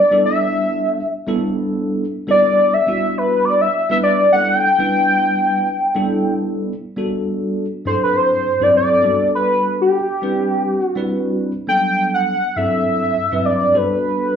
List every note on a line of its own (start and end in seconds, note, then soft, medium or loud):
0.00 0.21 D5 medium
0.11 0.99 G3 medium
0.11 0.99 B3 medium
0.11 0.99 D4 medium
0.11 0.99 E4 medium
0.11 1.00 A4 medium
0.26 1.09 E5 medium
1.27 2.03 G3 medium
1.27 2.04 B3 medium
1.27 2.04 D4 medium
1.27 2.04 E4 medium
1.27 2.04 A4 loud
2.27 2.74 G3 medium
2.27 2.74 B3 medium
2.27 2.74 D4 medium
2.27 2.74 E4 medium
2.27 2.74 A4 medium
2.27 2.75 D5 medium
2.74 3.19 E5 loud
2.86 3.65 G3 medium
2.86 3.65 B3 medium
2.86 3.66 D4 medium
2.86 3.66 E4 medium
2.86 3.66 F#4 medium
3.18 3.46 B4 medium
3.45 3.63 D5 loud
3.61 3.91 E5 medium
3.89 4.23 G3 medium
3.89 4.23 B3 medium
3.89 4.23 D4 medium
3.89 4.24 E4 medium
3.89 4.24 B4 medium
3.89 3.97 E5 loud
4.03 4.31 D5 medium
4.32 4.66 G3 medium
4.32 4.67 B3 medium
4.32 4.67 D4 medium
4.32 4.67 E4 medium
4.32 4.67 A4 medium
4.32 4.48 F#5 loud
4.49 6.34 G5 loud
4.79 5.67 G3 medium
4.79 5.67 B3 medium
4.79 5.67 D4 medium
4.79 5.67 E4 medium
4.79 5.68 B4 medium
5.95 6.72 G3 medium
5.95 6.72 B3 medium
5.95 6.72 D4 medium
5.95 6.72 E4 medium
5.95 6.72 A4 medium
6.96 7.64 G3 medium
6.96 7.64 B3 medium
6.96 7.64 D4 medium
6.96 7.65 F#4 medium
6.96 7.65 A4 medium
7.85 8.44 G2 medium
7.85 8.44 F#3 medium
7.85 8.45 C4 medium
7.85 8.45 D4 medium
7.85 8.45 E4 medium
7.85 8.45 A4 medium
7.85 8.01 C5 medium
8.03 8.18 B4 medium
8.16 8.64 C5 loud
8.60 9.03 G2 medium
8.60 9.03 F#3 medium
8.60 9.03 C4 medium
8.60 9.02 D4 medium
8.60 9.04 E4 medium
8.60 9.03 A4 medium
8.60 8.75 D5 medium
8.77 9.30 D5 medium
9.02 9.97 G3 medium
9.02 9.98 B3 medium
9.02 9.98 D4 medium
9.02 9.98 F#4 medium
9.02 9.98 A4 medium
9.35 9.76 B4 loud
9.81 10.81 G4 medium
10.21 10.80 G3 medium
10.21 10.80 C4 medium
10.21 10.80 D4 medium
10.21 10.81 E4 medium
10.21 10.81 B4 medium
10.81 11.36 F#4 medium
10.96 11.51 G3 medium
10.96 11.51 C4 medium
10.96 11.51 D4 medium
10.96 11.51 E4 medium
10.96 11.51 B4 medium
11.67 12.35 F#3 medium
11.67 12.34 G3 medium
11.67 12.35 B3 medium
11.67 12.35 D4 medium
11.67 12.35 A4 medium
11.67 12.11 G5 loud
12.14 12.58 F#5 loud
12.56 13.15 G2 medium
12.56 13.15 F#3 medium
12.56 13.15 C4 medium
12.56 13.15 D4 medium
12.56 13.16 E4 medium
12.56 13.16 A4 medium
12.56 13.47 E5 medium
13.31 13.74 G2 medium
13.31 13.74 F#3 medium
13.31 13.74 C4 medium
13.31 13.73 D4 medium
13.31 13.74 E4 medium
13.31 13.74 B4 medium
13.45 13.78 D5 medium
13.73 14.36 G3 medium
13.73 14.36 B3 medium
13.73 14.36 D4 medium
13.73 14.36 F#4 medium
13.73 14.36 A4 medium
13.73 14.36 B4 medium